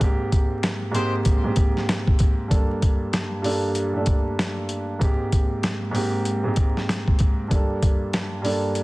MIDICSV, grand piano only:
0, 0, Header, 1, 2, 480
1, 0, Start_track
1, 0, Tempo, 625000
1, 8, Time_signature, 4, 2, 24, 8
1, 6785, End_track
2, 0, Start_track
2, 0, Title_t, "Grand piano"
2, 0, Program_c, 0, 0
2, 0, Control_c, 0, 64, 127
2, 0, Note_on_c, 0, 44, 74
2, 2, Note_on_c, 0, 56, 68
2, 9, Note_on_c, 0, 58, 69
2, 17, Note_on_c, 0, 60, 69
2, 18, Control_c, 0, 64, 0
2, 26, Note_on_c, 0, 67, 91
2, 142, Control_c, 0, 64, 127
2, 453, Note_off_c, 0, 44, 0
2, 457, Note_off_c, 0, 56, 0
2, 460, Note_off_c, 0, 58, 0
2, 464, Note_off_c, 0, 60, 0
2, 469, Note_off_c, 0, 67, 0
2, 702, Note_on_c, 0, 44, 89
2, 710, Note_on_c, 0, 56, 82
2, 718, Note_on_c, 0, 58, 84
2, 726, Note_on_c, 0, 60, 80
2, 734, Note_on_c, 0, 67, 95
2, 941, Note_off_c, 0, 44, 0
2, 945, Note_off_c, 0, 56, 0
2, 949, Note_off_c, 0, 58, 0
2, 953, Note_off_c, 0, 60, 0
2, 957, Note_off_c, 0, 67, 0
2, 1105, Note_on_c, 0, 44, 76
2, 1114, Note_on_c, 0, 56, 65
2, 1120, Note_on_c, 0, 58, 68
2, 1128, Note_on_c, 0, 60, 75
2, 1137, Note_on_c, 0, 67, 83
2, 1619, Note_off_c, 0, 44, 0
2, 1624, Note_off_c, 0, 56, 0
2, 1627, Note_off_c, 0, 58, 0
2, 1631, Note_off_c, 0, 60, 0
2, 1635, Note_off_c, 0, 67, 0
2, 1905, Note_on_c, 0, 43, 75
2, 1912, Note_on_c, 0, 55, 69
2, 1921, Note_on_c, 0, 58, 73
2, 1929, Note_on_c, 0, 62, 67
2, 1936, Note_on_c, 0, 69, 81
2, 1938, Control_c, 0, 64, 0
2, 2054, Control_c, 0, 64, 127
2, 2368, Note_off_c, 0, 43, 0
2, 2372, Note_off_c, 0, 55, 0
2, 2377, Note_off_c, 0, 58, 0
2, 2380, Note_off_c, 0, 62, 0
2, 2384, Note_off_c, 0, 69, 0
2, 2626, Note_on_c, 0, 43, 81
2, 2634, Note_on_c, 0, 55, 76
2, 2642, Note_on_c, 0, 58, 77
2, 2649, Note_on_c, 0, 62, 81
2, 2657, Note_on_c, 0, 69, 93
2, 2863, Note_off_c, 0, 43, 0
2, 2867, Note_off_c, 0, 55, 0
2, 2871, Note_off_c, 0, 58, 0
2, 2874, Note_off_c, 0, 62, 0
2, 2878, Note_off_c, 0, 69, 0
2, 3020, Note_on_c, 0, 43, 73
2, 3028, Note_on_c, 0, 55, 66
2, 3037, Note_on_c, 0, 57, 54
2, 3045, Note_on_c, 0, 62, 69
2, 3053, Note_on_c, 0, 69, 82
2, 3074, Note_off_c, 0, 57, 0
2, 3086, Note_on_c, 0, 58, 61
2, 3537, Note_off_c, 0, 43, 0
2, 3541, Note_off_c, 0, 55, 0
2, 3549, Note_off_c, 0, 62, 0
2, 3553, Note_off_c, 0, 69, 0
2, 3570, Note_off_c, 0, 58, 0
2, 3834, Note_on_c, 0, 44, 76
2, 3842, Note_on_c, 0, 56, 70
2, 3849, Note_on_c, 0, 58, 68
2, 3857, Note_on_c, 0, 60, 67
2, 3859, Control_c, 0, 64, 0
2, 3865, Note_on_c, 0, 67, 86
2, 3983, Control_c, 0, 64, 127
2, 4293, Note_off_c, 0, 44, 0
2, 4297, Note_off_c, 0, 56, 0
2, 4300, Note_off_c, 0, 58, 0
2, 4304, Note_off_c, 0, 60, 0
2, 4309, Note_off_c, 0, 67, 0
2, 4541, Note_on_c, 0, 44, 87
2, 4549, Note_on_c, 0, 56, 79
2, 4557, Note_on_c, 0, 58, 78
2, 4565, Note_on_c, 0, 60, 79
2, 4574, Note_on_c, 0, 67, 93
2, 4781, Note_off_c, 0, 44, 0
2, 4784, Note_off_c, 0, 56, 0
2, 4789, Note_off_c, 0, 58, 0
2, 4793, Note_off_c, 0, 60, 0
2, 4797, Note_off_c, 0, 67, 0
2, 4945, Note_on_c, 0, 44, 77
2, 4953, Note_on_c, 0, 56, 65
2, 4961, Note_on_c, 0, 58, 65
2, 4968, Note_on_c, 0, 60, 70
2, 4977, Note_on_c, 0, 67, 82
2, 5459, Note_off_c, 0, 44, 0
2, 5463, Note_off_c, 0, 56, 0
2, 5467, Note_off_c, 0, 58, 0
2, 5471, Note_off_c, 0, 60, 0
2, 5475, Note_off_c, 0, 67, 0
2, 5744, Note_on_c, 0, 43, 76
2, 5751, Note_on_c, 0, 55, 68
2, 5760, Note_on_c, 0, 58, 72
2, 5768, Note_on_c, 0, 62, 70
2, 5776, Control_c, 0, 64, 0
2, 5776, Note_on_c, 0, 69, 81
2, 5924, Control_c, 0, 64, 127
2, 6208, Note_off_c, 0, 43, 0
2, 6212, Note_off_c, 0, 55, 0
2, 6216, Note_off_c, 0, 58, 0
2, 6220, Note_off_c, 0, 62, 0
2, 6224, Note_off_c, 0, 69, 0
2, 6464, Note_on_c, 0, 43, 85
2, 6472, Note_on_c, 0, 55, 80
2, 6480, Note_on_c, 0, 58, 80
2, 6488, Note_on_c, 0, 62, 83
2, 6496, Note_on_c, 0, 69, 93
2, 6702, Note_off_c, 0, 43, 0
2, 6706, Note_off_c, 0, 55, 0
2, 6710, Note_off_c, 0, 58, 0
2, 6714, Note_off_c, 0, 62, 0
2, 6718, Note_off_c, 0, 69, 0
2, 6785, End_track
0, 0, End_of_file